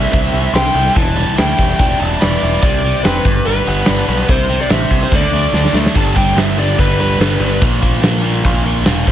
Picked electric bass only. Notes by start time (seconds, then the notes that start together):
0.13 C2
0.32 C2
0.53 C2
0.74 C2
0.96 E1
1.38 D2
1.59 E1
1.79 E1
2.01 E1
2.22 E1
2.43 E1
2.63 C2
3.05 F1
3.25 G1
3.46 G1
3.68 G1
3.89 G1
4.08 B1
4.29 C2
4.70 A1
4.91 C2
5.12 D2
5.31 D2
5.53 D2
5.73 D2
5.95 G1
6.35 G1
6.79 G1
7.18 G1
7.39 G1
7.62 A#1
8.02 A#1
8.45 A#1
8.86 E1
9.07 F1